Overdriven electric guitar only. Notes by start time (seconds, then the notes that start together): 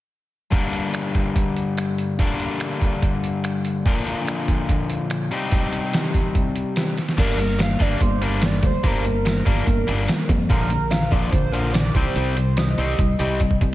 0.51 G2 D3 G3 A#3 D4 A#4
2.19 G2 D3 G3 A#3 D4 A#4
3.86 A#2 D3 F3 A#3 D4 A#4
5.31 C3 G3 C4 D#4 G4
7.17 G3 A#3 D4
7.39 G3 A#3
7.59 G3 A#3
7.79 G3 A#3 D4
8.01 G3 A#3
8.22 G3 A#3 D4
8.43 G3 A#3
8.63 G3 A#3
8.83 G3 A#3 D4
9.05 G3 A#3
9.25 G3 A#3
9.45 G3 A#3 D4
9.67 G3 A#3
9.87 G3 A#3 D4
10.09 G3 A#3
10.29 G3 A#3
10.49 A#2 D3 F3
10.70 A#2 D3
10.91 A#2 D3
11.11 A#2 D3 F3
11.32 A#2 D3
11.52 A#2 D3 F3
11.74 A#2 D3
11.96 C3 G3 C4
12.16 C3 G3 C4
12.36 C3 G3
12.57 C3 G3
12.78 C3 G3 C4
13.00 C3 G3
13.19 C3 G3 C4
13.41 C3 G3
13.61 C3 G3